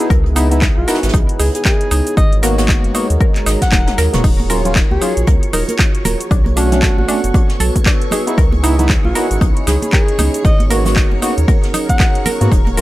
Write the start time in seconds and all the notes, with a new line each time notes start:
Already playing: B3 D#4 E4 F#4 G#4 B4 E6
0.00 B3 D#4 E4, cabasa
0.10 C#2 A#4, kick, closed hi-hat, cabasa
0.24 C#5, closed hi-hat
0.36 B3 D#4 E4, closed hi-hat, open hi-hat, cabasa
0.51 B3 D#4 E4, closed hi-hat, cabasa
0.61 D#4, kick, snare, clap, closed hi-hat, cabasa
0.77 B1 F#4
0.87 B3 D#4 E4 A#4 B5, snare, closed hi-hat, open hi-hat, cabasa
0.95 snare, closed hi-hat
1.03 G#1, snare, closed hi-hat, cabasa
1.09 snare, closed hi-hat
1.14 B1 D#4, kick, closed hi-hat, cabasa
1.29 closed hi-hat
1.39 C#2 D#4 G#4, open hi-hat, cabasa
1.55 G#4, closed hi-hat, cabasa
1.65 G#4 A#4, kick, snare, clap, closed hi-hat, cabasa
1.81 closed hi-hat
1.91 C#2 D#4, closed hi-hat, open hi-hat, cabasa
2.07 closed hi-hat, cabasa
2.17 G#1 G#3 D#4 F#4 A#4 D#5, kick, closed hi-hat, cabasa
2.32 closed hi-hat
2.42 A#3 B3 F#4 A#4, snare, closed hi-hat, open hi-hat, cabasa
2.58 A#3 B3 F#4, snare, closed hi-hat, open hi-hat, cabasa
2.69 D#4, kick, snare, clap, closed hi-hat, cabasa
2.74 A#5
2.84 F#1, closed hi-hat
2.94 A#3 B3 D#4 F#4, closed hi-hat, open hi-hat, cabasa
3.10 D#2, closed hi-hat, cabasa
3.21 A#4, kick, cabasa
3.36 clap, closed hi-hat
3.46 G#1 D#4, snare, closed hi-hat, open hi-hat, cabasa
3.61 F#5, kick, snare, closed hi-hat, cabasa
3.72 D#1 D#4, kick, snare, clap, closed hi-hat, high tom, cabasa
3.87 snare, closed hi-hat, high tom
3.97 D#2 A#4, snare, closed hi-hat, open hi-hat, cabasa
4.13 D#1 A#3 B3 F#4, snare, closed hi-hat, mid tom, cabasa
4.24 D#1 D#4 F4 C#5 C#6, kick, closed hi-hat, crash, cabasa
4.39 closed hi-hat, high conga
4.49 F#3 C#4 F4 A#4, closed hi-hat, open hi-hat, cabasa
4.65 F#3 C#4 F4, closed hi-hat, low conga, cabasa
4.76 D#4, kick, snare, clap, closed hi-hat, cabasa
4.91 C#2 G#4, high conga
5.01 F#3 C#4 D#4 F4, closed hi-hat, open hi-hat, cabasa
5.17 A#1, closed hi-hat, cabasa
5.27 C#2 A#4, kick, closed hi-hat, high conga, cabasa
5.43 closed hi-hat
5.53 D#1 D#4 A#4, open hi-hat, low conga, cabasa
5.68 A#4, closed hi-hat, high conga, cabasa
5.79 D#4, kick, snare, clap, closed hi-hat, cabasa
5.95 closed hi-hat
6.05 D#1 A#4, closed hi-hat, open hi-hat, high conga, low conga, cabasa
6.21 closed hi-hat, cabasa
6.31 B1 B3 D4 F#4 A4, kick, closed hi-hat, cabasa
6.46 closed hi-hat, high conga
6.56 A3 C#4 D4 F#4, closed hi-hat, open hi-hat, cabasa
6.72 A3 C#4 D4, snare, closed hi-hat, low conga, cabasa
6.82 A4, kick, snare, clap, closed hi-hat, cabasa
6.89 B4
6.98 A1 F#4, high conga
7.04 A3 E6, closed hi-hat
7.08 C#4 D4, open hi-hat, cabasa
7.13 A5
7.24 F#1, closed hi-hat, cabasa
7.34 D4, kick, closed hi-hat, high conga, cabasa
7.49 snare, closed hi-hat
7.60 B1 A4, closed hi-hat, open hi-hat, low conga, cabasa
7.76 kick, closed hi-hat, high conga, cabasa
7.86 D4, kick, snare, clap, closed hi-hat, cabasa
8.02 closed hi-hat
8.11 C#4 D#4 E4 G#4, closed hi-hat, open hi-hat, high conga, low conga, cabasa
8.27 B3 D#4 E4 G#4, closed hi-hat, cabasa
8.38 C#2 A#4, kick, closed hi-hat, cabasa
8.53 closed hi-hat, high conga
8.63 B3 D#4 E4 C#5, closed hi-hat, open hi-hat, cabasa
8.79 B3 D#4 E4, closed hi-hat, low conga, cabasa
8.89 D#4, kick, snare, clap, closed hi-hat, cabasa
9.05 B1 F#4, high conga
9.15 B3 D#4 E4 A#4 B5, closed hi-hat, open hi-hat, cabasa
9.31 G#1, closed hi-hat, cabasa
9.41 B1 D#4, kick, closed hi-hat, high conga, cabasa
9.57 closed hi-hat
9.67 C#2 D#4 G#4, snare, closed hi-hat, open hi-hat, low conga, cabasa
9.82 G#4, closed hi-hat, high conga, cabasa
9.92 G#4 A#4, kick, clap, closed hi-hat, cabasa
10.08 closed hi-hat
10.18 C#2 D#4, closed hi-hat, open hi-hat, high conga, low conga, cabasa
10.34 closed hi-hat, cabasa
10.44 G#1 D#4 F#4 A#4 D#5, kick, closed hi-hat, cabasa
10.60 closed hi-hat, high conga
10.70 A#3 B3 F#4 A#4, closed hi-hat, open hi-hat, cabasa
10.85 A#3 B3 F#4, snare, open hi-hat, low conga, cabasa
10.96 D#4, kick, snare, clap, closed hi-hat, cabasa
11.12 F#1, high conga
11.22 A#3 B3 D#4 F#4, closed hi-hat, open hi-hat, cabasa
11.38 D#2 A#5, closed hi-hat, cabasa
11.48 A#4, kick, closed hi-hat, high conga, cabasa
11.63 snare, closed hi-hat
11.74 D#4, closed hi-hat, open hi-hat, low conga, cabasa
11.89 F#5, kick, closed hi-hat, high conga, cabasa
11.99 D#4, kick, snare, clap, closed hi-hat, cabasa
12.15 closed hi-hat
12.26 A#4, closed hi-hat, open hi-hat, high conga, low conga, cabasa
12.41 G#2 A#3 B3 F#4, closed hi-hat, cabasa
12.52 D#1 D#4 F4 C#5, kick, closed hi-hat, cabasa
12.67 closed hi-hat, high conga
12.77 F#3 C#4 A#4, closed hi-hat, open hi-hat, cabasa